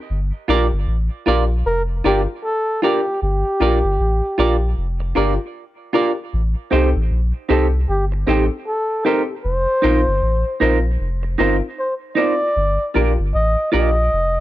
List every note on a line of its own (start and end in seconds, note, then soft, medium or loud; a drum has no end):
0.10 0.32 G1 medium
0.48 0.70 A#1 medium
0.48 0.66 D4 loud
0.48 0.65 F4 medium
0.48 0.66 F4 medium
0.48 0.66 G4 medium
0.48 0.66 A#4 medium
0.48 0.67 A#4 loud
0.48 0.66 D5 medium
0.72 0.86 G1 medium
0.87 1.09 A1 medium
1.26 1.63 A#1 medium
1.26 1.43 D4 medium
1.26 1.43 F4 medium
1.26 1.44 F4 medium
1.26 1.43 F4 medium
1.26 1.44 G4 medium
1.26 1.44 A#4 medium
1.26 1.44 D5 medium
1.66 2.01 F1 medium
1.66 1.82 A#4 loud
2.04 2.27 G1 medium
2.04 2.21 D4 medium
2.04 2.21 F4 medium
2.04 2.22 F4 medium
2.04 2.22 G4 medium
2.04 2.22 G4 loud
2.04 2.22 A#4 medium
2.04 2.22 A#4 loud
2.04 2.22 D5 medium
2.44 2.80 A4 loud
2.82 2.99 D4 medium
2.82 2.99 F4 medium
2.82 3.00 F4 medium
2.82 3.00 G4 medium
2.82 3.19 G4 medium
2.82 3.00 A#4 medium
2.82 3.00 A#4 loud
2.82 3.00 D5 medium
3.06 3.12 G4 soft
3.06 3.12 A#4 soft
3.22 3.44 G1 loud
3.22 4.73 G4 medium
3.60 3.82 A#1 medium
3.60 3.77 D4 medium
3.60 3.77 F4 medium
3.60 3.77 G4 medium
3.60 3.78 A#4 loud
3.60 3.78 A#4 medium
3.60 3.78 D5 medium
3.84 3.98 G1 medium
4.00 4.21 A1 medium
4.38 4.74 A#1 medium
4.38 4.55 D4 medium
4.38 4.55 F4 medium
4.38 4.55 G4 medium
4.38 4.56 A#4 medium
4.38 4.56 D5 medium
4.78 5.13 F1 loud
5.00 muted clean electric guitar stroke soft
5.15 5.38 G1 loud
5.15 5.33 D4 loud
5.15 5.33 F4 medium
5.15 5.33 G4 medium
5.15 5.33 A#4 medium
5.15 5.33 A#4 loud
5.15 5.34 D5 medium
5.93 6.11 D4 medium
5.93 6.11 F4 medium
5.93 6.11 G4 medium
5.93 6.11 A#4 medium
5.93 6.11 A#4 loud
5.93 6.12 D5 medium
6.33 6.55 A1 loud
6.71 6.94 C2 medium
6.71 6.88 C4 medium
6.71 6.88 D#4 medium
6.71 6.89 G4 medium
6.71 6.89 A4 loud
6.71 6.89 C5 medium
6.96 7.10 A1 medium
7.11 7.32 A#1 medium
7.49 7.86 C2 medium
7.49 7.66 C4 medium
7.49 7.66 D#4 medium
7.49 7.67 G4 medium
7.49 7.67 A4 medium
7.49 7.67 C5 medium
7.88 8.24 G1 loud
7.88 8.05 G4 medium
8.12 muted clean electric guitar stroke soft
8.27 8.49 A1 medium
8.27 8.44 C4 medium
8.27 8.44 D#4 medium
8.27 8.44 G4 medium
8.27 8.45 G4 medium
8.27 8.44 G4 medium
8.27 8.45 A4 loud
8.27 8.45 C5 medium
8.67 9.03 A4 medium
9.04 9.22 C4 medium
9.04 9.22 D#4 medium
9.04 9.22 G4 medium
9.04 9.23 G4 medium
9.04 9.22 A4 loud
9.04 9.22 A#4 medium
9.04 9.23 C5 medium
9.29 9.35 G4 soft
9.29 9.35 A4 soft
9.45 9.66 F1 loud
9.45 10.57 C5 loud
9.82 10.05 A#1 medium
9.82 10.00 C4 medium
9.82 10.00 D#4 medium
9.82 10.00 F4 medium
9.82 10.00 A#4 medium
9.82 10.01 A#4 loud
9.82 10.01 C5 loud
10.07 10.21 G1 medium
10.22 10.44 A1 medium
10.60 10.97 A#1 medium
10.60 10.78 C4 medium
10.60 10.78 D#4 medium
10.60 10.78 F4 medium
10.60 10.78 A#4 medium
10.60 10.79 C5 medium
11.01 11.36 F1 loud
11.23 muted clean electric guitar stroke soft
11.38 11.61 G1 medium
11.38 11.56 C4 loud
11.38 11.56 D#4 medium
11.38 11.56 F4 medium
11.38 11.56 A#4 medium
11.38 11.56 A#4 loud
11.38 11.56 C5 medium
11.79 11.95 C5 medium
12.15 12.34 C4 medium
12.15 12.33 D#4 medium
12.15 12.34 D#4 medium
12.15 12.34 F4 medium
12.15 12.34 A#4 medium
12.15 12.34 C5 medium
12.15 12.91 D5 loud
12.41 12.47 F4 soft
12.41 12.47 A#4 soft
12.56 12.78 G1 medium
12.94 13.17 A#1 medium
12.94 13.11 D4 loud
12.94 13.12 F4 medium
12.94 13.12 G4 medium
12.94 13.12 A#4 loud
12.94 13.12 A#4 medium
12.94 13.12 D5 medium
13.19 13.33 G1 medium
13.35 13.56 A1 loud
13.35 13.70 D#5 loud
13.72 14.09 A#1 medium
13.72 13.89 D4 medium
13.72 13.89 F4 medium
13.72 13.90 G4 medium
13.72 13.90 A#4 medium
13.72 13.90 A#4 loud
13.72 13.90 D5 medium
13.72 14.40 D#5 medium
14.13 14.40 F1 medium